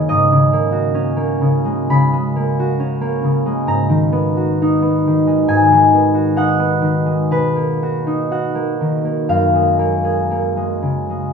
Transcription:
<<
  \new Staff \with { instrumentName = "Harp" } { \time 4/4 \key gis \dorian \tempo 4 = 65 <cis'' dis''>2 b''2 | ais''2 gis''4 fis''4 | b'4 fis''4 eis''2 | }
  \new Staff \with { instrumentName = "Harp" } { \time 4/4 \key gis \dorian <gis, ais dis' gis'>16 cis16 ais16 fis'16 cis'16 ais16 cis16 gis16 cis16 gis16 ais16 fis'16 cis'16 ais16 cis16 gis16 | gis,16 dis16 b16 fis'16 dis'16 b16 dis16 gis16 gis,16 dis16 b16 fis'16 dis'16 b16 dis16 gis16 | b,16 ais16 fis'16 dis'16 fis'16 ais16 dis16 ais16 fis,16 gis16 ais16 gis'16 ais16 gis16 cis16 gis16 | }
>>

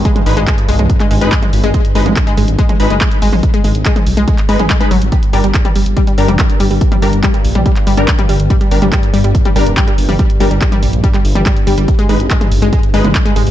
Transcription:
<<
  \new Staff \with { instrumentName = "Synth stab" } { \time 4/4 \key aes \lydian \tempo 4 = 142 r8 <aes ees' ces''>16 r2 <aes ees' ces''>16 r4 | r8 <aes ees' ces''>16 r4. r16 <aes ees' ces''>16 r4 r16 | r2 r8 <aes ees' ces''>16 r8 <aes ees' ces''>16 r8 | r8 <g d' bes'>16 r4. r16 <g d' bes'>16 r4 r16 |
r8 <g d' bes'>16 r2 <g d' bes'>16 r4 | r8 <g d' bes'>16 r4. r16 <g d' bes'>16 r4 r16 | r8 <g d' bes'>16 r2. r16 | r8 <aes ees' ces''>16 r4. r16 <aes ees' ces''>16 r4 r16 | }
  \new Staff \with { instrumentName = "Synth arpeggio sound" } { \clef bass \time 4/4 \key aes \lydian aes16 aes16 r16 aes16 aes16 r16 aes16 aes16 r16 aes16 aes16 r16 aes16 aes16 r16 aes16 | aes16 r16 aes16 aes16 r16 aes16 aes16 r16 aes16 aes16 r16 aes16 aes16 r16 aes16 aes16 | r16 aes16 aes16 r16 aes16 aes16 r16 aes16 aes16 r16 aes16 aes16 aes16 aes16 fis16 r16 | g16 r16 g16 g16 r16 g16 g16 r16 g16 g16 r16 g16 g16 r16 g16 g16 |
r16 g16 g16 r16 g16 g16 r16 g16 g16 r16 g16 g16 r16 g16 g16 r16 | g16 g16 r16 g16 g16 r16 g16 g16 r16 g16 g16 r16 g16 g16 r16 g16 | g16 r16 g16 g16 r16 g16 g16 r16 g16 g16 r16 g16 g16 r16 g16 g16 | r16 aes16 aes16 r16 aes16 aes16 r16 aes16 aes16 r16 aes16 aes16 r16 aes16 aes16 r16 | }
  \new Staff \with { instrumentName = "Synth drone" } { \clef bass \time 4/4 \key aes \lydian g,1~ | g,1~ | g,1 | g,1~ |
g,1~ | g,1~ | g,1~ | g,1 | }
  \new Staff \with { instrumentName = "Detuned saw bass" } { \clef bass \time 4/4 \key aes \lydian r8 aes,,16 aes,,16 r8 ces,16 ces,16 r8 aes,,16 aes,,16 r8 aes,,16 aes,,16 | r8 aes,,16 aes,,16 r8 aes,,16 aes,,16 r8 aes,,16 fis,,16 r8 aes,,16 aes,,16 | r8 aes,,16 aes,,16 r8 ces,16 ces,16 r8 aes,,16 aes,,16 r8 aes,,16 aes,,16 | r8 g,,16 g,,16 r8 g,,16 g,,16 r8 g,,16 f,,16 r8 g,,16 g,,16 |
r8 g,,16 g,,16 r8 bes,,16 bes,,16 r8 g,,16 g,,16 r8 g,,16 g,,16 | r8 g,,16 g,,16 r8 g,,16 g,,16 r8 g,,16 f,,16 r8 g,,16 g,,16 | r8 g,,16 g,,16 r8 bes,,16 bes,,16 r8 g,,16 g,,16 r8 g,,16 g,,16 | r8 aes,,16 aes,,16 r8 aes,,16 aes,,16 r8 aes,,16 fis,,16 r8 aes,,16 aes,,16 | }
  \new DrumStaff \with { instrumentName = "Drums" } \drummode { \time 4/4 <hh bd>16 <hh toml>16 hho16 hh16 <hc hh bd>16 hh16 hho16 <hh toml>16 <hh bd>16 <hc hh>16 hho16 hh16 <hc hh bd>16 <hh toml>16 hho16 hh16 | <hh bd>16 hh16 hho16 <hh toml>16 <hc hh bd>16 hh16 hho16 hh16 <hh bd>16 <hh toml>16 hho16 hh16 <hc hh bd>16 hh16 hho16 <hho toml>16 | <hh bd>16 hh16 hho16 hh16 <hc hh bd>16 <hh toml>16 hho16 hh16 <hh bd>16 <hc hh>16 hho16 <hh toml>16 <hc hh bd>16 hh16 hho16 hh16 | <hh bd>16 hh16 hho16 hh16 <hc hh bd>16 <hh toml>16 hho16 hh16 <hh bd>16 hh16 hho16 <hh toml>16 <hc hh bd>16 hh16 hho16 hho16 |
<hh bd>16 <hh toml>16 hho16 hh16 <hc hh bd>16 hh16 hho16 <hh toml>16 <hh bd>16 <hc hh>16 hho16 hh16 <hc hh bd>16 <hh toml>16 hho16 hh16 | <hh bd>16 hh16 hho16 <hh toml>16 <hc hh bd>16 hh16 hho16 hh16 <hh bd>16 <hh toml>16 hho16 hh16 <hc hh bd>16 hh16 hho16 <hho toml>16 | <hh bd>16 hh16 hho16 hh16 <hc hh bd>16 <hh toml>16 hho16 hh16 <hh bd>16 <hc hh>16 hho16 <hh toml>16 <hc hh bd>16 hh16 hho16 hh16 | <hh bd>16 hh16 hho16 hh16 <hc hh bd>16 <hh toml>16 hho16 hh16 <hh bd>16 hh16 hho16 <hh toml>16 <hc hh bd>16 hh16 hho16 hho16 | }
>>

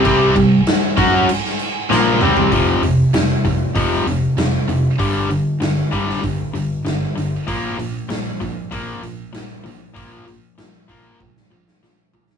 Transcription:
<<
  \new Staff \with { instrumentName = "Distorted electric guitar" } { \clef bass \time 4/4 \key f \mixolydian \tempo 4 = 97 <c g c'>8 <c g>8 r8 <fis cis' fis'>8 r4 <bes, f bes>8 <c g c'>8 | r1 | r1 | r1 |
r1 | }
  \new Staff \with { instrumentName = "Distorted electric guitar" } { \clef bass \time 4/4 \key f \mixolydian <c g c'>8 <c g>8 r8 <fis cis' fis'>8 r4 <bes, f bes>8 <c g c'>8 | <f, c f>8 <f, c>8 <f, c>8 <f, c>8 <f, c f>8 <f, c>8 <f, c>8 <f, c>8 | <g, d g>8 <g, d>8 <g, d>8 <g, d g>8 <g, d>8 <g, d>8 <g, d>8 <g, d>8 | <bes, f bes>8 <bes, f>8 <bes, f>8 <bes, f>8 <bes, f bes>8 <bes, f>8 <bes, f>8 <bes, f>8 |
<bes, f bes>8 <bes, f>8 <bes, f>8 <bes, f bes>8 <bes, f>8 <bes, f>8 <bes, f>8 <bes, f>8 | }
  \new Staff \with { instrumentName = "Overdriven electric guitar" } { \clef bass \time 4/4 \key f \mixolydian <c g c'>8 <c g>8 r8 <fis cis' fis'>8 r4 <bes, f bes>8 <c g c'>8 | <f, c f>8 <f, c>8 <f, c>8 <f, c>8 <f, c f>8 <f, c>8 <f, c>8 <f, c>8 | <g, d g>8 <g, d>8 <g, d>8 <g, d g>8 <g, d>8 <g, d>8 <g, d>8 <g, d>8 | <bes, f bes>8 <bes, f>8 <bes, f>8 <bes, f>8 <bes, f bes>8 <bes, f>8 <bes, f>8 <bes, f>8 |
<bes, f bes>8 <bes, f>8 <bes, f>8 <bes, f bes>8 <bes, f>8 <bes, f>8 <bes, f>8 <bes, f>8 | }
  \new Staff \with { instrumentName = "Picked electric bass" } { \clef bass \time 4/4 \key f \mixolydian c,8 c,8 r8 fis,8 r4 bes,,8 c,8 | f,,8 f,,8 f,,8 f,,8 f,,8 f,,8 f,,8 f,,8 | g,,4 g,,8 g,,8 g,,8 g,,8 g,,8 g,,8 | bes,,8 bes,,8 bes,,8 bes,,8 bes,,8 bes,,8 bes,,8 bes,,8 |
bes,,4 bes,,8 bes,,8 bes,,8 bes,,8 bes,,8 bes,,8 | }
  \new DrumStaff \with { instrumentName = "Drums" } \drummode { \time 4/4 <cymc bd>8 <cymc bd>8 <cymc sn>8 <cymc bd>8 cymc16 sn16 cymc8 sn16 tommh16 toml16 tomfh16 | <hho bd>8 hho8 <hho sn>8 <hho bd>8 <hho bd>16 sn16 hho8 <hho sn>8 hho8 | <hho bd>8 hho8 <hho sn>8 <hho bd>16 sn16 <hho bd>8 hho8 <hho sn>8 hho8 | <hho bd>8 hho8 <hho sn>8 <hho bd>8 <hho bd>8 hho8 <hho sn>8 hho8 |
<hho bd>8 hho8 <hho sn>8 <hho bd>8 <bd tommh>16 sn8 sn16 sn8 tomfh16 sn16 | }
>>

